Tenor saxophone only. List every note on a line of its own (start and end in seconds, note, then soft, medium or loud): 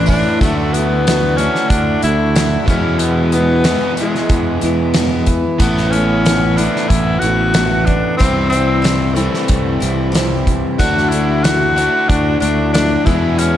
0.09 0.40 D4 medium
0.41 0.75 A3 medium
0.74 1.39 B3 medium
1.37 1.70 C#4 medium
1.69 2.02 D4 medium
2.03 2.64 E4 medium
2.68 3.01 C#4 medium
2.99 3.32 B3 medium
3.33 3.94 B3 medium
3.99 4.59 G#3 medium
5.60 5.93 B3 medium
5.92 6.58 C#4 medium
6.57 6.90 D4 medium
6.88 7.21 E4 loud
7.19 7.87 F#4 medium
7.85 8.16 D4 medium
8.17 8.49 C4 medium
8.49 9.16 C4 medium
9.14 9.81 A3 medium
10.79 11.10 F#4 medium
11.09 11.45 E4 medium
11.44 12.10 F#4 medium
12.09 12.40 D4 medium
12.40 12.71 D4 medium
12.73 13.07 D4 medium
13.06 13.40 E4 medium
13.38 13.57 C#4 medium